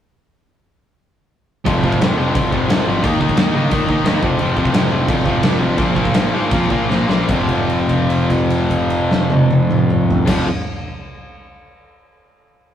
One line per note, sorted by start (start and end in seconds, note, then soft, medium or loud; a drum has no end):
1.65 1.79 F1 medium
1.65 1.81 F2 medium
1.65 1.82 C3 loud
1.65 1.83 F3 loud
1.65 kick loud
1.65 crash medium
1.83 1.96 F1 medium
1.83 1.99 F2 medium
1.83 2.00 C3 medium
1.83 2.00 F3 medium
1.83 kick medium
1.92 kick medium
2.00 2.13 F1 loud
2.00 2.16 F2 medium
2.00 2.16 C3 medium
2.00 2.17 F3 medium
2.00 snare loud
2.00 crash medium
2.17 2.30 F1 medium
2.17 2.33 F2 medium
2.17 2.34 C3 loud
2.17 2.34 F3 loud
2.34 2.48 G#1 medium
2.34 2.51 F2 medium
2.34 2.52 C3 medium
2.34 2.52 F3 medium
2.34 kick loud
2.34 crash medium
2.52 2.65 F1 medium
2.52 2.68 F2 loud
2.52 2.69 C3 loud
2.52 2.69 F3 loud
2.52 kick medium
2.68 2.81 F1 medium
2.68 2.85 F2 medium
2.68 2.86 C3 medium
2.68 2.87 F3 loud
2.68 snare loud
2.68 crash medium
2.86 2.99 G#1 medium
2.86 3.02 F2 medium
2.86 3.03 C3 medium
2.86 3.03 F3 loud
3.04 3.16 D#2 medium
3.04 3.19 D#3 medium
3.04 3.20 A#3 loud
3.04 3.20 D#4 loud
3.04 kick loud
3.04 crash medium
3.20 3.33 D#2 medium
3.20 3.36 D#3 medium
3.20 3.37 A#3 medium
3.20 3.38 D#4 medium
3.20 kick medium
3.29 kick medium
3.37 3.50 D#2 loud
3.37 3.53 D#3 medium
3.37 3.54 A#3 medium
3.37 3.55 D#4 medium
3.37 snare loud
3.37 crash medium
3.54 3.67 C#3 loud
3.54 3.70 D#3 medium
3.54 3.71 A#3 medium
3.54 3.72 D#4 loud
3.71 3.83 A#2 medium
3.71 3.88 D#3 medium
3.71 3.88 A#3 medium
3.71 3.89 D#4 medium
3.71 kick loud
3.71 crash medium
3.89 4.01 D#3 medium
3.89 4.04 D#3 medium
3.89 4.05 A#3 loud
3.89 4.06 D#4 loud
3.89 kick medium
4.05 4.18 D#2 medium
4.05 4.21 D#3 medium
4.05 4.22 A#3 medium
4.05 4.22 D#4 loud
4.05 snare loud
4.05 crash medium
4.22 4.35 F1 medium
4.22 4.37 F2 medium
4.22 4.39 C3 loud
4.22 4.40 F3 loud
4.22 kick loud
4.39 4.53 F1 medium
4.39 4.55 F2 medium
4.39 4.55 C3 loud
4.39 4.57 F3 loud
4.39 crash medium
4.56 4.69 F1 medium
4.56 4.72 F2 medium
4.56 4.72 C3 medium
4.56 4.74 F3 medium
4.56 kick medium
4.65 kick medium
4.73 4.87 F1 medium
4.73 4.89 F2 medium
4.73 4.90 C3 medium
4.73 4.92 F3 medium
4.73 snare loud
4.73 crash medium
4.90 5.03 F1 loud
4.90 5.07 F2 medium
4.90 5.07 C3 loud
4.90 5.09 F3 loud
5.08 5.21 G#1 medium
5.08 5.24 F2 medium
5.08 5.25 C3 medium
5.08 5.26 F3 medium
5.08 kick loud
5.08 crash medium
5.25 5.38 F1 medium
5.25 5.41 F2 medium
5.25 5.42 C3 loud
5.25 5.44 F3 loud
5.25 kick medium
5.42 5.55 F1 medium
5.42 5.58 F2 loud
5.42 5.59 C3 medium
5.42 5.61 F3 medium
5.42 snare loud
5.42 crash medium
5.59 5.73 G#1 medium
5.59 5.77 F2 medium
5.59 5.76 C3 medium
5.59 5.78 F3 medium
5.77 5.91 A#1 medium
5.77 5.94 A#2 medium
5.77 5.94 F3 loud
5.77 5.96 A#3 loud
5.77 kick loud
5.77 crash medium
5.95 6.09 A#1 medium
5.95 6.13 A#2 medium
5.95 6.13 F3 medium
5.95 6.14 A#3 medium
5.95 kick medium
6.05 kick medium
6.14 6.28 A#1 loud
6.14 6.32 A#2 medium
6.14 6.32 F3 medium
6.14 6.33 A#3 medium
6.14 snare loud
6.14 crash medium
6.33 6.46 G#2 medium
6.33 6.50 A#2 medium
6.33 6.50 F3 loud
6.33 6.51 A#3 loud
6.51 6.65 F2 medium
6.51 6.69 A#2 medium
6.51 6.70 F3 medium
6.51 6.70 A#3 medium
6.51 kick loud
6.51 crash medium
6.70 6.87 A#2 loud
6.70 6.84 A#2 medium
6.70 6.88 F3 loud
6.70 6.88 A#3 loud
6.70 kick medium
6.88 7.04 A#1 medium
6.88 7.06 A#2 medium
6.88 7.07 F3 loud
6.88 7.08 A#3 loud
6.88 snare medium
7.07 7.24 A#1 medium
7.07 7.27 A#2 medium
7.07 7.27 F3 medium
7.07 7.28 A#3 medium
7.07 snare medium
7.28 10.19 F1 medium
7.28 10.25 F2 medium
7.28 10.27 C3 medium
7.28 10.29 F3 loud
7.28 kick loud
7.28 crash medium
7.49 kick medium
7.49 crash soft
7.70 crash soft
7.89 kick medium
7.89 crash soft
8.10 crash soft
8.30 kick medium
8.30 crash soft
8.50 crash medium
8.70 kick medium
8.70 crash medium
8.90 crash soft
9.11 snare medium
9.30 high tom loud
9.51 high tom medium
9.71 mid tom loud
9.90 mid tom loud
10.10 floor tom loud
10.25 10.45 F1 medium
10.25 10.45 F2 medium
10.25 10.46 C3 medium
10.25 10.46 F3 loud
10.25 kick loud
10.25 snare loud
10.25 crash loud